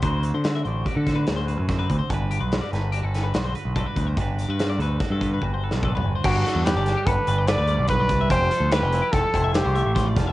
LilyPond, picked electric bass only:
\new Staff \with { instrumentName = "Picked electric bass" } { \clef bass \time 5/4 \key g \major \tempo 4 = 145 d,8. d8. a,,8 r16 d8. d,8. fis,8. d,16 r16 | g,,8. b,,8 r16 g,,8. g,,8. b,,8 r16 b,,8 r16 d,8 | g,,8. g,8. d,8 r16 g,8. g,,8. b,,8. g,,16 r16 | g,,8 r16 e,8 g,,8 r16 g,,16 r16 g,,8. d,8 b,,8. c,8 |
f,,8 r16 d,8 f,,8 r16 f,,16 r16 f,,8. c,8 a,,8. f,,8 | }